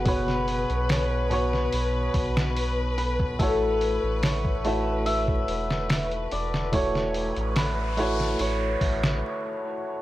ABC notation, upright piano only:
X:1
M:4/4
L:1/8
Q:1/4=72
K:A
V:1 name="Upright piano"
[B,,B,Fc]3 [B,,B,Fc]4- [B,,B,Fc] | [A,EFc]3 [A,EFe]4- [A,EFe] | [A,EFc]3 [A,EFc]4- [A,EFc] |]